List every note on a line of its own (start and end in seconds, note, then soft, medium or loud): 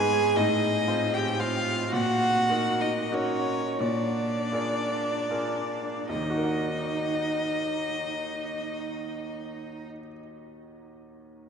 0.00 0.40 G#2 medium
0.00 0.40 G#3 medium
0.00 0.40 D#4 medium
0.00 0.39 G#4 loud
0.00 0.40 B4 medium
0.00 0.38 G#5 loud
0.36 0.87 A2 medium
0.36 1.16 D#4 loud
0.36 1.15 D#5 loud
0.87 1.36 C4 medium
0.87 1.36 F4 medium
0.87 1.37 C5 medium
1.14 1.42 G4 medium
1.14 1.41 G5 loud
1.39 1.90 C4 medium
1.39 1.90 F4 medium
1.39 1.92 F4 loud
1.39 1.90 C5 medium
1.39 1.93 F5 loud
1.93 2.48 A#2 medium
1.93 2.83 F#4 loud
1.93 2.83 F#5 loud
2.49 3.08 D#4 medium
2.49 3.08 F#4 medium
2.49 3.08 A#4 medium
2.81 3.15 D#4 medium
2.81 3.15 D#5 loud
3.12 3.80 C#4 medium
3.12 3.75 D#4 medium
3.12 3.75 F#4 medium
3.12 3.76 A#4 medium
3.12 3.81 C#5 loud
3.79 4.50 A#2 medium
3.79 6.09 D4 medium
3.79 6.09 D5 loud
4.52 5.27 F4 soft
4.52 5.27 G#4 medium
4.52 5.27 A#4 medium
5.30 6.05 F4 medium
5.30 6.05 G#4 soft
5.30 6.06 A#4 medium
6.09 9.84 D#2 medium
6.09 9.85 D#4 medium
6.09 9.85 D#5 loud
6.15 9.91 D#3 medium
6.23 9.98 D#4 medium
6.30 10.05 F#4 medium
6.37 10.12 A#4 medium
6.44 10.19 F#5 medium